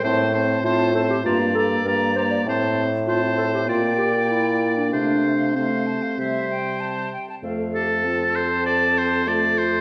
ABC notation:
X:1
M:4/4
L:1/16
Q:1/4=98
K:F
V:1 name="Flute"
a2 a2 a2 a2 b2 b2 b2 b2 | a4 a4 g8 | f4 f2 a f e2 g2 a2 g a | f4 a12 |]
V:2 name="Oboe"
c2 c2 c2 c2 d2 d2 d2 d2 | c4 c4 d8 | c4 c4 c6 z2 | z2 A4 c2 d2 c2 d2 c2 |]
V:3 name="Clarinet"
z4 F2 A G F2 A2 B2 c d | z4 F2 A G F2 G2 E3 D | D4 C8 z4 | A2 G2 F2 A2 A4 F4 |]
V:4 name="French horn"
C2 C2 C2 C2 B,2 B,2 B,2 B,2 | C4 C4 B,8 | A,4 A,4 G,6 z2 | A,4 C8 A,4 |]
V:5 name="Bassoon" clef=bass
A,,4 A,,4 G,,4 G,,4 | A,,8 B,,8 | C,8 C,6 z2 | F,,16 |]